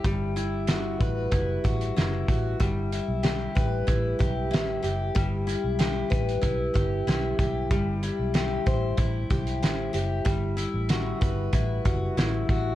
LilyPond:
<<
  \new Staff \with { instrumentName = "Steel-string acoustic guitar" } { \time 4/4 \key b \phrygian \tempo 4 = 94 g8 e'8 fis'8 b'8 e'8 fis'8 e'8 fis'8 | g8 e'8 g'8 b'8 e'8 g'8 e'8 g'8 | g8 e'8 g'8 b'8 e'8 g'8 e'8 g'8 | g8 e'8 g'8 c''8 e'8 g'8 e'8 g'8 |
g8 e'8 fis'8 b'8 e'8 fis'8 e'8 fis'8 | }
  \new Staff \with { instrumentName = "Fingered electric bass" } { \clef bass \time 4/4 \key b \phrygian g,,4. a,,8 fis,,8 a,,8 fis,,8 a,,8 | g,,8. b,,8. a,,8 a,,8 b,,8 a,,8 fis,,8 | g,,8. b,,8. a,,8 b,,8 g,,8 b,,8 b,,8 | g,,8. b,,8. a,,8 a,,8 b,,8 a,,8 fis,,8 |
g,,8. a,,8. g,,8 a,,8 fis,,8 a,,8 a,,8 | }
  \new DrumStaff \with { instrumentName = "Drums" } \drummode { \time 4/4 <hh bd>8 hh8 <hh sn>8 <hh bd>8 <hh bd>8 <hh bd>16 hh16 <hh sn>8 <hh bd>8 | <hh bd>8 hh8 <hh sn>8 <hh bd>8 <hh bd>8 <hh bd>8 <hh sn>8 hh8 | <hh bd>8 hh8 <hh sn>8 <hh bd>16 hh16 <hh bd>8 <hh bd>8 <hh sn>8 <hh bd>8 | <hh bd>8 hh8 <hh sn>8 <hh bd>8 <hh bd>8 <hh bd>16 hh16 <hh sn>8 hh8 |
<hh bd>8 hh8 <hh sn>8 <hh bd>8 <hh bd>8 <hh bd>8 <hh sn>8 <hh bd>8 | }
>>